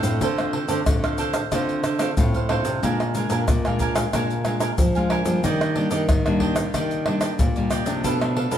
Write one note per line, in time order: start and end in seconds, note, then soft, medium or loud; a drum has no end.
0.00 0.19 A2 medium
0.00 0.18 A2 medium
0.00 0.32 A3 medium
0.00 0.20 D4 medium
0.00 0.21 A4 medium
0.00 0.21 C5 medium
0.00 0.21 F5 medium
0.00 pandeiro medium
0.00 shaker medium
0.04 0.32 C4 medium
0.04 0.32 F4 medium
0.21 0.63 D3 medium
0.21 0.84 D3 medium
0.21 0.52 D4 medium
0.21 0.54 A4 medium
0.21 0.54 C5 medium
0.21 0.54 F5 medium
0.21 pandeiro medium
0.21 shaker medium
0.21 surdo medium
0.38 0.66 A3 medium
0.38 0.66 C4 medium
0.38 0.66 F4 medium
0.38 pandeiro soft
0.38 tamborim medium
0.38 shaker soft
0.53 0.68 D4 soft
0.53 0.68 A4 soft
0.53 0.68 C5 medium
0.53 0.69 F5 medium
0.53 pandeiro medium
0.68 0.83 D3 medium
0.68 0.81 A3 medium
0.68 0.81 C4 medium
0.68 0.79 D4 medium
0.68 0.82 F4 medium
0.68 0.79 A4 medium
0.68 0.79 C5 medium
0.68 0.79 F5 medium
0.68 pandeiro medium
0.68 shaker medium
0.86 1.49 A2 soft
0.86 1.42 D3 medium
0.86 1.29 A3 medium
0.86 1.30 C4 soft
0.86 1.30 F4 medium
0.86 pandeiro medium
0.86 tamborim medium
0.86 shaker medium
0.86 surdo medium
1.04 1.18 A4 soft
1.04 1.18 C5 soft
1.04 1.19 F5 soft
1.04 pandeiro soft
1.04 tamborim medium
1.04 shaker soft
1.18 1.34 D4 medium
1.18 1.34 A4 medium
1.18 1.34 C5 medium
1.18 1.33 F5 medium
1.18 pandeiro medium
1.18 shaker medium
1.34 1.51 A4 soft
1.34 1.51 C5 soft
1.34 1.50 F5 soft
1.34 pandeiro medium
1.34 tamborim medium
1.34 shaker medium
1.52 2.08 D3 medium
1.52 2.14 D3 medium
1.52 1.83 A3 soft
1.52 1.83 C4 soft
1.52 1.83 D4 medium
1.52 1.84 F4 medium
1.52 1.84 A4 medium
1.52 1.84 C5 medium
1.52 1.85 F5 medium
1.52 pandeiro medium
1.52 tamborim medium
1.52 shaker medium
1.52 surdo medium
1.69 pandeiro soft
1.69 shaker soft
1.84 1.99 D4 soft
1.84 1.99 A4 soft
1.84 2.00 C5 soft
1.84 2.00 F5 medium
1.84 pandeiro medium
1.84 tamborim medium
1.84 shaker medium
1.99 2.11 A3 soft
1.99 2.12 C4 medium
1.99 2.10 D4 medium
1.99 2.12 F4 medium
1.99 2.10 A4 medium
1.99 2.10 C5 medium
1.99 2.10 F5 medium
1.99 pandeiro medium
1.99 tamborim medium
1.99 shaker medium
2.17 2.80 A2 medium
2.17 2.59 A2 medium
2.17 2.37 A3 medium
2.17 2.37 C4 medium
2.17 2.37 F4 medium
2.17 pandeiro medium
2.17 shaker medium
2.17 surdo loud
2.34 2.49 A4 soft
2.34 2.49 C5 soft
2.34 2.49 F5 soft
2.34 pandeiro soft
2.34 shaker soft
2.49 2.69 A3 soft
2.49 2.69 C4 medium
2.49 2.81 D4 medium
2.49 2.69 F4 medium
2.49 2.81 A4 medium
2.49 2.82 C5 medium
2.49 2.82 F5 medium
2.49 pandeiro medium
2.49 tamborim medium
2.65 2.79 C3 medium
2.65 pandeiro medium
2.65 shaker medium
2.83 3.24 A#2 medium
2.83 3.45 A#2 medium
2.83 3.02 G#3 soft
2.83 3.14 D4 medium
2.83 3.02 D4 medium
2.83 3.03 F4 medium
2.83 3.14 A#4 medium
2.83 3.15 F5 medium
2.83 3.15 G#5 medium
2.83 pandeiro medium
2.83 shaker medium
2.83 surdo medium
3.00 pandeiro soft
3.00 tamborim medium
3.00 shaker soft
3.15 3.46 G#3 medium
3.15 3.29 D4 soft
3.15 3.46 D4 soft
3.15 3.46 F4 medium
3.15 3.30 A#4 medium
3.15 3.30 F5 medium
3.15 3.31 G#5 medium
3.15 pandeiro medium
3.15 shaker medium
3.30 3.45 A#2 medium
3.30 3.40 D4 medium
3.30 3.40 A#4 medium
3.30 3.41 F5 medium
3.30 3.41 G#5 medium
3.30 pandeiro medium
3.30 shaker medium
3.48 4.04 A#2 medium
3.48 4.10 F3 soft
3.48 pandeiro medium
3.48 tamborim medium
3.48 shaker medium
3.48 surdo medium
3.65 3.93 G#3 medium
3.65 3.93 D4 medium
3.65 3.93 F4 medium
3.65 3.80 A#4 soft
3.65 3.80 F5 soft
3.65 3.80 G#5 soft
3.65 pandeiro soft
3.65 tamborim medium
3.65 shaker soft
3.79 3.95 D4 medium
3.79 3.96 A#4 medium
3.79 3.95 F5 medium
3.79 3.94 G#5 medium
3.79 pandeiro medium
3.79 shaker medium
3.79 surdo medium
3.95 4.08 G#3 medium
3.95 4.08 D4 medium
3.95 4.08 F4 medium
3.95 4.12 A#4 soft
3.95 4.12 F5 soft
3.95 4.11 G#5 soft
3.95 pandeiro medium
3.95 tamborim medium
3.95 shaker medium
4.13 4.69 A#2 medium
4.13 4.76 A#2 medium
4.13 4.33 G#3 medium
4.13 4.44 D4 medium
4.13 4.33 D4 medium
4.13 4.33 F4 medium
4.13 4.45 A#4 medium
4.13 4.45 F5 medium
4.13 4.45 G#5 medium
4.13 pandeiro medium
4.13 tamborim medium
4.13 shaker medium
4.13 surdo soft
4.30 pandeiro soft
4.30 shaker soft
4.45 4.76 G#3 soft
4.45 4.59 D4 soft
4.45 4.77 D4 medium
4.45 4.77 F4 medium
4.45 4.59 A#4 soft
4.45 4.60 F5 soft
4.45 4.60 G#5 medium
4.45 pandeiro medium
4.45 tamborim medium
4.45 shaker medium
4.60 4.70 D4 medium
4.60 4.70 A#4 medium
4.60 4.71 F5 medium
4.60 4.71 G#5 medium
4.60 pandeiro medium
4.60 tamborim medium
4.60 shaker medium
4.78 5.20 F3 medium
4.78 5.41 F3 medium
4.78 pandeiro medium
4.78 shaker medium
4.78 surdo loud
4.95 5.23 G#3 medium
4.95 5.23 D4 medium
4.95 5.23 F4 medium
4.95 5.10 A#4 soft
4.95 5.10 F5 soft
4.95 5.10 G#5 soft
4.95 pandeiro soft
4.95 shaker soft
5.10 5.42 D4 medium
5.10 5.42 A#4 medium
5.10 5.43 F5 medium
5.10 5.43 G#5 medium
5.10 pandeiro medium
5.10 tamborim medium
5.25 5.40 F3 medium
5.25 5.70 G3 medium
5.25 5.71 A#3 medium
5.25 5.71 D4 medium
5.25 pandeiro medium
5.25 shaker medium
5.44 5.86 D#3 loud
5.44 6.06 D#3 medium
5.44 5.75 G4 medium
5.44 5.76 D5 medium
5.44 5.75 D#5 medium
5.44 pandeiro medium
5.44 shaker medium
5.44 surdo medium
5.61 pandeiro soft
5.61 tamborim medium
5.61 shaker soft
5.75 6.07 G3 medium
5.75 6.07 A#3 medium
5.75 5.90 D4 medium
5.75 6.07 D4 medium
5.75 5.90 G4 medium
5.75 5.91 D5 medium
5.75 5.91 D#5 medium
5.75 pandeiro medium
5.91 6.06 D#3 medium
5.91 6.01 D4 medium
5.91 6.01 G4 medium
5.91 6.01 D5 medium
5.91 6.01 D#5 medium
5.91 pandeiro medium
5.91 shaker medium
6.09 6.71 A#2 soft
6.09 6.64 D#3 medium
6.09 pandeiro medium
6.09 tamborim medium
6.09 shaker medium
6.09 surdo loud
6.25 6.53 G3 medium
6.25 6.53 A#3 medium
6.25 6.54 D4 medium
6.25 6.40 G4 soft
6.25 6.40 D5 soft
6.25 6.41 D#5 soft
6.25 pandeiro soft
6.25 tamborim medium
6.25 shaker soft
6.40 6.56 D4 medium
6.40 6.56 G4 medium
6.40 6.55 D5 medium
6.40 6.56 D#5 medium
6.40 pandeiro medium
6.40 surdo medium
6.56 7.01 G3 medium
6.56 7.01 A#3 soft
6.56 7.01 D4 medium
6.56 6.73 G4 soft
6.56 6.72 D5 soft
6.56 6.72 D#5 soft
6.56 pandeiro medium
6.56 tamborim medium
6.56 shaker medium
6.74 7.36 D#3 medium
6.74 7.30 D#3 medium
6.74 7.05 G4 medium
6.74 7.06 D5 medium
6.74 7.06 D#5 medium
6.74 pandeiro medium
6.74 tamborim medium
6.74 shaker medium
6.74 surdo medium
6.91 pandeiro soft
6.91 shaker soft
7.06 7.50 G3 medium
7.06 7.50 A#3 medium
7.06 7.20 D4 soft
7.06 7.51 D4 medium
7.06 7.20 G4 soft
7.06 7.21 D5 medium
7.06 7.21 D#5 soft
7.06 pandeiro medium
7.06 tamborim medium
7.21 7.31 D4 medium
7.21 7.31 G4 medium
7.21 7.32 D5 medium
7.21 7.31 D#5 medium
7.21 pandeiro medium
7.21 tamborim medium
7.21 shaker medium
7.39 8.01 A#2 medium
7.39 7.81 A#2 medium
7.39 pandeiro medium
7.39 shaker medium
7.39 surdo loud
7.56 7.84 G3 medium
7.56 7.84 A#3 medium
7.56 7.84 D4 medium
7.56 7.70 G4 soft
7.56 7.71 D5 soft
7.56 7.70 D#5 soft
7.56 pandeiro soft
7.56 shaker soft
7.71 8.03 G4 medium
7.71 8.03 D5 medium
7.71 8.03 D#5 medium
7.71 pandeiro medium
7.71 tamborim medium
7.71 shaker medium
7.86 8.01 C3 medium
7.86 8.20 F3 medium
7.86 8.20 A3 medium
7.86 8.21 D4 medium
7.86 pandeiro medium
7.86 shaker medium
8.04 8.58 B2 medium
8.04 8.46 B2 medium
8.04 8.35 D4 medium
8.04 8.35 A4 medium
8.04 8.36 B4 medium
8.04 8.36 F5 medium
8.04 pandeiro medium
8.04 shaker medium
8.04 surdo medium
8.21 8.48 F3 medium
8.21 8.48 A3 medium
8.21 8.49 D4 medium
8.21 pandeiro soft
8.21 tamborim medium
8.21 shaker soft
8.36 8.50 D4 soft
8.36 8.50 A4 medium
8.36 8.51 B4 medium
8.36 8.51 F5 medium
8.36 pandeiro medium
8.51 8.58 B2 medium
8.51 8.58 F3 medium
8.51 8.58 A3 medium
8.51 8.58 D4 medium
8.51 8.58 A4 medium
8.51 8.58 B4 medium
8.51 8.58 F5 medium
8.51 pandeiro medium
8.51 shaker medium